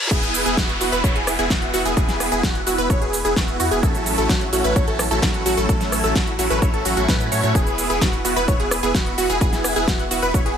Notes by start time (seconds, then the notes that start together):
Already playing: reverse cymbal, riser
0.11 E1 B3 E4 G#4, kick, closed hi-hat, crash, downlifter, shaker
0.23 closed hi-hat, shaker
0.34 open hi-hat, shaker
0.46 E1 B3 E4 G#4, closed hi-hat, shaker
0.57 E1 F#4, kick, snare, closed hi-hat, shaker
0.69 closed hi-hat
0.81 E1 B3 E4 F#4, open hi-hat, shaker
0.92 E1 B3 E4 B4, closed hi-hat, shaker
1.04 E1 B3 E4 C#5, kick, closed hi-hat, shaker
1.15 E1 B3 E4 G#4, closed hi-hat
1.27 cross-stick, open hi-hat, shaker
1.39 E1 B3 E4 G#4, closed hi-hat, shaker
1.50 E1 B3 E4 F#4, kick, snare, closed hi-hat, shaker
1.62 closed hi-hat
1.74 E1 B3 E4 F#4, open hi-hat, shaker
1.85 E1 B3 E4 G#4, closed hi-hat, shaker
1.97 E1 B3 E4 G#4, kick, closed hi-hat, shaker
2.08 snare, closed hi-hat, shaker
2.20 cross-stick, open hi-hat, shaker
2.32 E1 B3 E4 G#4, closed hi-hat, shaker
2.43 E1 B3 E4 F#4, kick, snare, closed hi-hat, shaker
2.55 closed hi-hat
2.67 E1 B3 E4 F#4, open hi-hat, shaker
2.78 E1 B3 E4 B4, closed hi-hat, shaker
2.90 E1 B3 E4 C#5, kick, closed hi-hat, shaker
3.01 E1 B3 E4 G#4, closed hi-hat
3.13 open hi-hat, shaker
3.25 E1 B3 E4 G#4, closed hi-hat, shaker
3.36 E1 B3 E4 F#4, kick, snare, closed hi-hat, shaker
3.48 closed hi-hat
3.60 E2 B3 E4 F#4, open hi-hat, shaker
3.71 E1 B3 E4 G#4, closed hi-hat, shaker
3.83 A1 A3 C#4 E4 A4, kick, closed hi-hat, shaker
3.95 closed hi-hat, shaker
4.06 open hi-hat, shaker
4.18 A1 F#3 A3 C#4 E4 A4, closed hi-hat, shaker
4.29 A1 F#3 A3 C#4 E4 F#4, kick, snare, closed hi-hat, shaker
4.41 closed hi-hat
4.53 A1 F#3 A3 C#4 E4 F#4, open hi-hat, shaker
4.64 A1 F#3 A3 C#4 E4 B4, closed hi-hat, shaker
4.76 A1 F#3 A3 C#4 E4 C#5, kick, closed hi-hat, shaker
4.88 A1 F#3 A3 C#4 E4 A4, closed hi-hat
4.99 cross-stick, open hi-hat, shaker
5.11 A1 F#3 A3 C#4 E4 A4, closed hi-hat, shaker
5.22 A1 F#3 A3 E4 F#4, kick, snare, closed hi-hat, shaker
5.34 closed hi-hat
5.46 A1 F#3 A3 C#4 E4 F#4, open hi-hat, shaker
5.57 A1 F#3 A3 C#4 E4 A4, closed hi-hat, shaker
5.69 A1 F#3 A3 C#4 E4 A4, kick, closed hi-hat, shaker
5.81 snare, closed hi-hat, shaker
5.92 cross-stick, open hi-hat, shaker
6.04 A1 F#3 A3 C#4 E4 A4, closed hi-hat, shaker
6.16 A1 F#3 A3 C#4 F#4, kick, snare, closed hi-hat, shaker
6.27 closed hi-hat
6.39 A1 F#3 A3 C#4 E4 F#4, open hi-hat, shaker
6.50 A1 F#3 A3 C#4 E4 B4, closed hi-hat, shaker
6.62 A1 F#3 A3 C#4 E4 C#5, kick, closed hi-hat, shaker
6.74 A1 F#3 A3 C#4 E4 A4, closed hi-hat
6.85 A1 F#3 A3 C#4 E4 F#4, open hi-hat, shaker
6.97 A1 F#3 A3 C#4 E4 F#4, closed hi-hat, shaker
7.08 A2 F#3 A3 C#4 E4 B4, kick, snare, closed hi-hat, shaker
7.20 closed hi-hat, shaker
7.32 A2 F#3 A3 C#4 E4 C#5, open hi-hat, shaker
7.43 A2 F#3 A3 C#4 E4 C#5, closed hi-hat, shaker
7.55 E1 B3 E4 G#4, kick, closed hi-hat, shaker
7.67 closed hi-hat, shaker
7.78 open hi-hat, shaker
7.90 E1 B3 E4 G#4, closed hi-hat, shaker
8.01 E1 B3 E4 F#4, kick, snare, closed hi-hat, shaker
8.13 closed hi-hat
8.25 E1 B3 E4 F#4, open hi-hat, shaker
8.36 E1 B3 E4 B4, closed hi-hat, shaker
8.48 E1 B3 E4 C#5, kick, closed hi-hat, shaker
8.60 E1 B3 E4 G#4, closed hi-hat
8.71 cross-stick, open hi-hat, shaker
8.83 E1 B3 E4 G#4, closed hi-hat, shaker
8.95 E1 E4 F#4, kick, snare, closed hi-hat, shaker
9.06 closed hi-hat
9.18 E1 B3 E4 F#4, open hi-hat, shaker
9.29 E1 B3 E4 G#4, closed hi-hat, shaker
9.41 E1 B3 E4 G#4, kick, closed hi-hat, shaker
9.53 snare, closed hi-hat, shaker
9.64 cross-stick, open hi-hat, shaker
9.76 E1 B3 E4 G#4, closed hi-hat, shaker
9.88 E1 B3 E4 F#4, kick, snare, closed hi-hat, shaker
9.99 closed hi-hat
10.11 E1 B3 E4 F#4, open hi-hat, shaker
10.22 E1 B3 E4 B4, closed hi-hat, shaker
10.34 E1 B3 E4 C#5, kick, closed hi-hat, shaker
10.46 E1 B3 E4 G#4, closed hi-hat